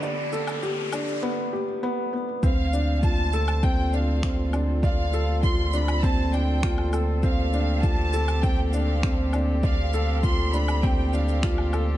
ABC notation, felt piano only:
X:1
M:4/4
L:1/8
Q:1/4=100
K:Ddor
V:1 name="Felt piano"
d A G D B, G B, B, | C D F A C D C D | d A F D C D F A | C D F A C D C D |
d A F D C D F A |]